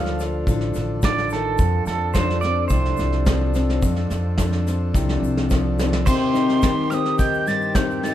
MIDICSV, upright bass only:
0, 0, Header, 1, 2, 480
1, 0, Start_track
1, 0, Tempo, 560224
1, 1363, Time_signature, 4, 2, 24, 8
1, 6976, End_track
2, 0, Start_track
2, 0, Title_t, "Upright bass"
2, 0, Program_c, 0, 32
2, 0, Note_on_c, 0, 38, 79
2, 369, Note_off_c, 0, 38, 0
2, 401, Note_on_c, 0, 33, 91
2, 630, Note_off_c, 0, 33, 0
2, 647, Note_on_c, 0, 33, 80
2, 1331, Note_off_c, 0, 33, 0
2, 1361, Note_on_c, 0, 41, 94
2, 1590, Note_off_c, 0, 41, 0
2, 1596, Note_on_c, 0, 41, 84
2, 2286, Note_off_c, 0, 41, 0
2, 2321, Note_on_c, 0, 36, 91
2, 2551, Note_off_c, 0, 36, 0
2, 2563, Note_on_c, 0, 36, 90
2, 3250, Note_off_c, 0, 36, 0
2, 3276, Note_on_c, 0, 41, 91
2, 3508, Note_off_c, 0, 41, 0
2, 3518, Note_on_c, 0, 41, 87
2, 4208, Note_off_c, 0, 41, 0
2, 4238, Note_on_c, 0, 36, 103
2, 4469, Note_off_c, 0, 36, 0
2, 4476, Note_on_c, 0, 36, 80
2, 5166, Note_off_c, 0, 36, 0
2, 6976, End_track
0, 0, End_of_file